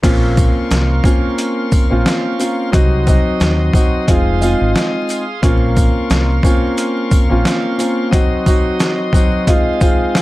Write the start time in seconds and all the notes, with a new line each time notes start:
0.03 A#1 A#3 C4 C#4 F4 A#4 F5 C6 C#6, kick, closed hi-hat, crash, sleigh bells
0.37 kick, shaker, sleigh bells
0.70 C2, snare, closed hi-hat, sleigh bells
1.04 A#3 C4 C#4 F4, kick, shaker, sleigh bells
1.38 closed hi-hat, sleigh bells
1.72 kick, shaker, sleigh bells
1.90 A#1 A#3 C4 C#4 F4
2.06 snare, closed hi-hat, sleigh bells
2.38 A#3 C4 C#4 F4, closed hi-hat, shaker, sleigh bells
2.72 C2 F#3 C4 D#4 F#4 D#5 D#6, kick, closed hi-hat, sleigh bells
3.06 F#3 C4 D#4 F#4, kick, shaker, sleigh bells
3.40 D#2, snare, closed hi-hat, sleigh bells
3.73 F#3 C4 D#4 F#4, kick, shaker, sleigh bells
4.07 F1 G#3 C4 D#4 F4 G#4 F5 D#6, kick, closed hi-hat, sleigh bells
4.41 G#3 C4 D#4 F4, shaker, sleigh bells
4.61 G#1
4.76 snare, closed hi-hat, sleigh bells
5.09 closed hi-hat, shaker, sleigh bells
5.42 A#1 A#3 C4 C#4 F4 A#4 C#6, kick, closed hi-hat, sleigh bells
5.76 kick, shaker, sleigh bells
6.10 C2, snare, closed hi-hat, sleigh bells
6.43 A#3 C4 C#4 F4, kick, shaker, sleigh bells
6.77 closed hi-hat, sleigh bells
7.11 kick, shaker, sleigh bells
7.29 A#1 A#3 C4 C#4 F4
7.45 snare, closed hi-hat, sleigh bells
7.78 A#3 C4 C#4 F4, closed hi-hat, shaker, sleigh bells
8.11 F#3 C4 D#4 F#4 D#5 D#6, kick, closed hi-hat, sleigh bells
8.45 F#3 C4 D#4 F#4, kick, shaker, sleigh bells
8.79 snare, closed hi-hat, sleigh bells
9.13 F#3 C4 D#4 F#4, kick, shaker, sleigh bells
9.47 G#3 C4 D#4 F4 G#4 F5, kick, closed hi-hat, sleigh bells
9.80 G#3 C4 D#4 F4, kick, shaker, sleigh bells
10.15 snare, closed hi-hat, sleigh bells